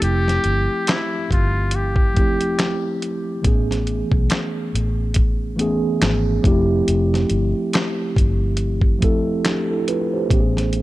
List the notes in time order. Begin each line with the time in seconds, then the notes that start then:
Already playing: F3 A3 C4 E4 G4
0.02 F1 G4, closed hi-hat
0.28 snare, closed hi-hat
0.44 G1, closed hi-hat
0.87 E4, snare, clap, closed hi-hat
1.31 G1 F4, kick, closed hi-hat
1.71 closed hi-hat
1.75 G4
1.96 kick
2.14 F1 F3 A3 C4, kick, closed hi-hat
2.18 E4 G4
2.41 closed hi-hat
2.59 snare, clap, closed hi-hat
3.02 closed hi-hat
3.42 A1 E3 A3 B3, kick, closed hi-hat
3.46 C#4 G#4
3.71 snare, closed hi-hat
3.87 closed hi-hat
4.12 B1, kick
4.30 snare, clap, closed hi-hat
4.75 A1, closed hi-hat
5.14 kick, closed hi-hat
5.56 E3 A3 B3 C#4, closed hi-hat
5.61 G#4
6.02 G#1, snare, clap, closed hi-hat
6.42 F1 F3 A3 C4 E4, kick, closed hi-hat
6.47 G4
6.88 F1, closed hi-hat
7.14 snare, closed hi-hat
7.30 G1, closed hi-hat
7.73 snare, clap, closed hi-hat
8.16 G1, kick, closed hi-hat
8.57 closed hi-hat
8.81 kick
8.99 F1 F3 A3 C4, kick, closed hi-hat
9.03 E4 A4
9.45 D4 G4, snare, clap, closed hi-hat
9.71 E4 A4
9.88 F4 B4, closed hi-hat
10.13 G4 C5
10.29 A1 E3 A3 B3, kick, closed hi-hat
10.33 C#4 G4
10.40 G#4
10.57 snare, closed hi-hat
10.73 closed hi-hat